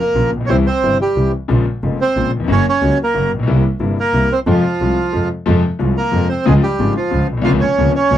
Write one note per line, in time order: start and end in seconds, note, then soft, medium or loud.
0.00 0.31 A#3 medium
0.00 0.30 A#4 medium
0.15 0.30 A#1 medium
0.15 0.30 A#2 soft
0.15 0.30 C#3 soft
0.15 0.30 F3 soft
0.15 0.30 A#3 soft
0.15 0.30 F4 medium
0.31 0.48 A#1 medium
0.37 0.41 A1 soft
0.37 0.45 A#1 medium
0.45 0.49 B1 medium
0.45 0.63 C2 medium
0.45 0.57 C5 loud
0.45 0.50 C#5 medium
0.49 0.63 C2 medium
0.49 0.64 C3 medium
0.49 0.63 E3 medium
0.49 0.64 G3 medium
0.49 0.57 C4 medium
0.49 0.64 E4 medium
0.67 0.98 C4 medium
0.67 0.97 C5 loud
0.83 0.97 G1 medium
0.83 0.97 G2 soft
0.83 0.97 C3 soft
0.83 0.97 E3 soft
0.83 0.97 G3 soft
0.83 0.97 E4 soft
1.01 1.31 G3 medium
1.01 1.32 G4 medium
1.16 1.30 C2 medium
1.16 1.30 C2 soft
1.16 1.30 C3 soft
1.16 1.30 E3 soft
1.16 1.30 G3 soft
1.16 1.31 E4 soft
1.48 1.63 A#1 medium
1.48 1.64 A#1 medium
1.48 1.63 A#2 medium
1.48 1.63 C#3 medium
1.48 1.63 G#3 medium
1.48 1.63 A#3 medium
1.48 1.63 F4 medium
1.83 1.97 F1 soft
1.83 1.97 F1 medium
1.83 1.97 F2 medium
1.83 1.97 C#3 soft
1.83 1.97 G#3 soft
1.83 1.97 A#3 soft
1.83 1.97 F4 soft
2.01 2.31 C4 medium
2.01 2.32 C5 medium
2.16 2.30 A#1 medium
2.16 2.30 A#2 medium
2.16 2.30 C#3 soft
2.16 2.30 G#3 soft
2.16 2.31 A#3 soft
2.16 2.30 F4 soft
2.37 2.41 D#2 soft
2.37 2.45 E2 medium
2.44 2.49 F2 medium
2.44 2.62 F#2 medium
2.44 2.62 C#3 medium
2.48 2.63 F#1 medium
2.48 2.63 F#3 medium
2.48 2.63 A#3 medium
2.48 2.66 C#4 medium
2.48 2.63 F#4 medium
2.48 2.66 C#5 loud
2.69 2.98 C#4 medium
2.69 2.98 C#5 medium
2.81 2.96 C#2 medium
2.81 2.96 C#3 medium
2.81 2.96 F#3 soft
2.81 2.95 A#3 soft
2.81 2.96 F#4 medium
3.03 3.32 A#3 medium
3.03 3.32 A#4 medium
3.14 3.29 F#1 medium
3.14 3.29 F#2 medium
3.14 3.29 C#3 soft
3.14 3.28 F#3 medium
3.14 3.29 A#3 soft
3.14 3.29 F#4 medium
3.33 3.39 A1 soft
3.33 3.48 A#1 medium
3.39 3.44 A#1 medium
3.39 3.47 B1 medium
3.47 3.62 C2 medium
3.47 3.62 C2 loud
3.47 3.62 C3 medium
3.47 3.62 G3 medium
3.47 3.62 A#3 medium
3.47 3.62 E4 medium
3.80 3.94 G1 medium
3.80 3.95 G1 medium
3.80 3.94 G2 medium
3.80 3.94 C3 soft
3.80 3.95 G3 soft
3.80 3.95 A#3 soft
3.80 3.94 E4 medium
4.00 4.30 A#3 medium
4.00 4.33 A#4 loud
4.13 4.28 C2 medium
4.13 4.28 C2 soft
4.13 4.28 C3 medium
4.13 4.28 G3 soft
4.13 4.28 A#3 soft
4.13 4.28 E4 medium
4.32 4.39 C4 medium
4.32 4.40 C5 medium
4.47 4.61 F2 medium
4.47 4.61 C3 medium
4.47 4.61 F3 medium
4.47 4.61 G#3 medium
4.47 4.61 F4 medium
4.47 5.28 F4 medium
4.51 5.29 F3 medium
4.80 4.95 C2 medium
4.80 4.95 C3 soft
4.80 4.95 F3 soft
4.80 4.95 G#3 soft
4.80 4.95 F4 soft
5.12 5.27 F2 medium
5.12 5.28 F2 medium
5.12 5.28 C3 soft
5.12 5.28 F3 soft
5.12 5.27 G#3 soft
5.12 5.28 F4 soft
5.46 5.61 F2 medium
5.46 5.62 F2 medium
5.46 5.61 C3 medium
5.46 5.61 F3 medium
5.46 5.61 G#3 medium
5.46 5.61 F4 medium
5.79 5.94 C2 medium
5.79 5.95 C2 medium
5.79 5.94 C3 medium
5.79 5.94 F3 soft
5.79 5.94 G#3 soft
5.79 5.94 F4 medium
5.97 6.29 A#3 medium
5.97 6.28 A#4 medium
6.11 6.27 F2 medium
6.11 6.28 F2 medium
6.11 6.27 C3 soft
6.11 6.27 F3 medium
6.11 6.27 G#3 soft
6.11 6.27 F4 soft
6.29 6.46 C4 medium
6.29 6.45 C5 medium
6.45 6.60 C#2 loud
6.45 6.61 C#2 loud
6.45 6.60 C#3 medium
6.45 6.60 F3 medium
6.45 6.60 G#3 medium
6.45 6.55 G#3 medium
6.45 6.61 F4 medium
6.45 6.53 G#4 loud
6.63 6.94 G3 medium
6.63 6.94 G4 medium
6.79 6.93 G#1 medium
6.79 6.94 G#1 medium
6.79 6.93 G#2 medium
6.79 6.93 C#3 soft
6.79 6.93 F3 soft
6.79 6.94 G#3 soft
6.79 6.93 F4 medium
6.97 7.27 F3 medium
6.97 7.27 F4 medium
7.11 7.25 C#2 medium
7.11 7.27 C#2 medium
7.11 7.26 C#3 medium
7.11 7.26 F3 soft
7.11 7.26 G#3 soft
7.11 7.26 F4 medium
7.30 7.37 A#1 medium
7.30 7.46 B1 medium
7.37 7.41 B1 medium
7.42 7.46 C2 medium
7.42 7.59 C#2 medium
7.42 7.59 C3 medium
7.42 7.59 C#3 loud
7.42 7.59 F3 medium
7.42 7.52 F4 medium
7.42 7.52 F5 loud
7.46 7.60 C#2 loud
7.46 7.59 A#3 medium
7.46 7.59 C#4 medium
7.61 7.93 C#4 medium
7.61 7.92 C#5 medium
7.78 7.92 C#2 medium
7.78 7.93 C#2 medium
7.78 7.92 C3 medium
7.78 7.92 C#3 medium
7.78 7.92 F3 soft
7.78 7.92 A#3 soft
7.78 7.92 C#4 medium
7.96 8.18 C#4 medium
7.96 8.18 C#5 loud
8.10 8.18 C#2 medium
8.10 8.18 C3 soft
8.10 8.18 C#3 medium
8.10 8.18 F3 soft
8.10 8.18 A#3 soft
8.10 8.18 C#4 medium